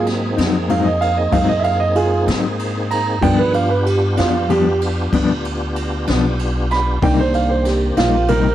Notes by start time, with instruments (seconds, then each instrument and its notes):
Already playing: upright bass G#2, grand piano F#3 A#3 C4, tonewheel organ A#3 C4 D#4 G#4
0.07 snare, ride
0.37 upright bass F2, clean electric guitar F#3 C4 D#4, snare, ride
0.68 clean electric guitar G#2 F#3 C4 D#4, grand piano F5, ride
0.85 grand piano D#5
1.01 grand piano F5, ride
1.17 grand piano D#5
1.31 upright bass F#2, clean electric guitar G#2 F#3 C4 D#4, grand piano F5, kick, ride
1.49 grand piano D#5
1.59 grand piano E5
1.64 grand piano F5, ride
1.80 grand piano D#5
1.95 grand piano F4 G#4, ride
2.27 upright bass G#2, clean electric guitar F#3 C4 D#4, snare, ride
2.59 ride
2.91 grand piano A#5, ride
3.21 clean electric guitar G2 F3 B3 D4, upright bass G2, tonewheel organ D#3 B3 G#4 F#5, grand piano F3 B3 D4 G5, kick, ride
3.39 grand piano B4
3.54 tonewheel organ B3 D4 F4 G4, grand piano F5, ride
3.70 grand piano B4
3.86 grand piano G4, ride
4.17 upright bass F2, clean electric guitar F3 B3 D4, grand piano F4, snare, ride
4.49 clean electric guitar G2 F3 B3 D4, grand piano G4, ride
4.82 ride
5.13 upright bass D2, clean electric guitar G2 F3 B3 D4, kick, ride
5.45 ride
5.76 ride
6.07 upright bass B1, clean electric guitar F3 B3 D4, snare, ride
6.39 ride
6.71 grand piano B5, snare, ride
7.02 upright bass C2, clean electric guitar C3 G3 A#3 D#4, grand piano D#3 A#3 D4 G5, tonewheel organ A#3 C4 G4, kick, ride
7.20 grand piano C5
7.34 grand piano F5, ride
7.50 grand piano C5
7.65 grand piano G4, snare, ride
7.97 upright bass A#1, clean electric guitar G3 A#3 D#4, grand piano F4, snare, ride
8.28 clean electric guitar C3 G3 A#3 D#4, grand piano A#4, ride